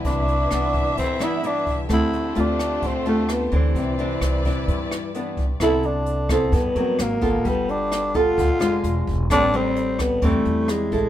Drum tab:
HH |xxxxxxxx|xxxxxxxx|xxxxxxxx|xxxxxxxx|
SD |--r--r--|r--r--r-|--r--r--|r--r--r-|
BD |o--oo--o|o---o---|o--oo--o|o--oo--o|

HH |xxxxxxxx|xxxxxxxx|
SD |--r--r--|r--r--r-|
BD |o--oo--o|o--oo--o|